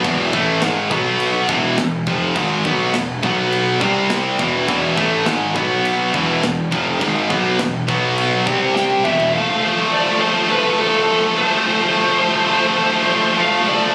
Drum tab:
CC |x---x---x---x---|x---x---x---x---|x---x---x---x---|x---x---x-------|
SD |----o-------o---|----o-------o---|----o-------o---|----o-------o---|
T1 |----------------|----------------|----------------|-------------o--|
T2 |----------------|----------------|----------------|--------------o-|
FT |----------------|----------------|----------------|---------------o|
BD |o-o---o---o---o-|o-o---o---o---o-|o-o---o---o---o-|o-o---o---o-----|

CC |----------------|----------------|
SD |----------------|----------------|
T1 |----------------|----------------|
T2 |----------------|----------------|
FT |----------------|----------------|
BD |----------------|----------------|